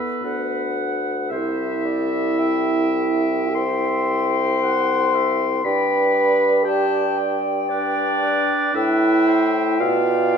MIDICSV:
0, 0, Header, 1, 6, 480
1, 0, Start_track
1, 0, Key_signature, 1, "major"
1, 0, Tempo, 1073345
1, 586, Time_signature, 4, 2, 24, 8
1, 1068, Tempo, 1171875
1, 1548, Tempo, 1065719
1, 2028, Tempo, 1015228
1, 2988, Tempo, 1043478
1, 4699, End_track
2, 0, Start_track
2, 0, Title_t, "Flute"
2, 0, Program_c, 0, 73
2, 105, Note_on_c, 0, 78, 46
2, 586, Note_on_c, 0, 76, 48
2, 593, Note_off_c, 0, 78, 0
2, 1067, Note_on_c, 0, 79, 53
2, 1073, Note_off_c, 0, 76, 0
2, 2510, Note_off_c, 0, 79, 0
2, 2513, Note_on_c, 0, 79, 53
2, 2857, Note_off_c, 0, 79, 0
2, 2989, Note_on_c, 0, 81, 58
2, 3230, Note_on_c, 0, 79, 64
2, 3237, Note_off_c, 0, 81, 0
2, 3946, Note_off_c, 0, 79, 0
2, 3949, Note_on_c, 0, 79, 66
2, 4699, Note_off_c, 0, 79, 0
2, 4699, End_track
3, 0, Start_track
3, 0, Title_t, "Oboe"
3, 0, Program_c, 1, 68
3, 0, Note_on_c, 1, 71, 62
3, 325, Note_off_c, 1, 71, 0
3, 577, Note_on_c, 1, 76, 68
3, 1528, Note_off_c, 1, 76, 0
3, 1543, Note_on_c, 1, 84, 88
3, 2510, Note_on_c, 1, 83, 80
3, 2517, Note_off_c, 1, 84, 0
3, 2983, Note_off_c, 1, 83, 0
3, 2985, Note_on_c, 1, 79, 72
3, 3336, Note_off_c, 1, 79, 0
3, 3464, Note_on_c, 1, 74, 79
3, 3949, Note_on_c, 1, 76, 85
3, 3956, Note_off_c, 1, 74, 0
3, 4438, Note_on_c, 1, 77, 82
3, 4444, Note_off_c, 1, 76, 0
3, 4699, Note_off_c, 1, 77, 0
3, 4699, End_track
4, 0, Start_track
4, 0, Title_t, "Clarinet"
4, 0, Program_c, 2, 71
4, 0, Note_on_c, 2, 69, 55
4, 111, Note_on_c, 2, 71, 54
4, 117, Note_off_c, 2, 69, 0
4, 588, Note_off_c, 2, 71, 0
4, 590, Note_on_c, 2, 72, 55
4, 828, Note_on_c, 2, 74, 49
4, 835, Note_off_c, 2, 72, 0
4, 1070, Note_on_c, 2, 76, 52
4, 1076, Note_off_c, 2, 74, 0
4, 1548, Note_off_c, 2, 76, 0
4, 1551, Note_on_c, 2, 76, 52
4, 2020, Note_off_c, 2, 76, 0
4, 2027, Note_on_c, 2, 78, 60
4, 2275, Note_on_c, 2, 76, 58
4, 2282, Note_off_c, 2, 78, 0
4, 2429, Note_off_c, 2, 76, 0
4, 2512, Note_on_c, 2, 74, 62
4, 2730, Note_off_c, 2, 74, 0
4, 2745, Note_on_c, 2, 74, 62
4, 3466, Note_on_c, 2, 71, 65
4, 3473, Note_off_c, 2, 74, 0
4, 3706, Note_off_c, 2, 71, 0
4, 3708, Note_on_c, 2, 71, 70
4, 3948, Note_off_c, 2, 71, 0
4, 3955, Note_on_c, 2, 71, 74
4, 4194, Note_on_c, 2, 72, 66
4, 4201, Note_off_c, 2, 71, 0
4, 4430, Note_off_c, 2, 72, 0
4, 4433, Note_on_c, 2, 74, 69
4, 4699, Note_off_c, 2, 74, 0
4, 4699, End_track
5, 0, Start_track
5, 0, Title_t, "French horn"
5, 0, Program_c, 3, 60
5, 0, Note_on_c, 3, 59, 65
5, 326, Note_off_c, 3, 59, 0
5, 583, Note_on_c, 3, 64, 85
5, 1548, Note_on_c, 3, 72, 92
5, 1555, Note_off_c, 3, 64, 0
5, 2508, Note_off_c, 3, 72, 0
5, 2511, Note_on_c, 3, 71, 91
5, 2984, Note_on_c, 3, 67, 86
5, 2991, Note_off_c, 3, 71, 0
5, 3342, Note_off_c, 3, 67, 0
5, 3466, Note_on_c, 3, 62, 84
5, 3934, Note_off_c, 3, 62, 0
5, 3949, Note_on_c, 3, 64, 98
5, 4430, Note_on_c, 3, 65, 94
5, 4437, Note_off_c, 3, 64, 0
5, 4699, Note_off_c, 3, 65, 0
5, 4699, End_track
6, 0, Start_track
6, 0, Title_t, "Bassoon"
6, 0, Program_c, 4, 70
6, 104, Note_on_c, 4, 38, 51
6, 585, Note_on_c, 4, 36, 56
6, 592, Note_off_c, 4, 38, 0
6, 2509, Note_off_c, 4, 36, 0
6, 2512, Note_on_c, 4, 43, 61
6, 3810, Note_off_c, 4, 43, 0
6, 3951, Note_on_c, 4, 45, 67
6, 4435, Note_on_c, 4, 47, 73
6, 4442, Note_off_c, 4, 45, 0
6, 4699, Note_off_c, 4, 47, 0
6, 4699, End_track
0, 0, End_of_file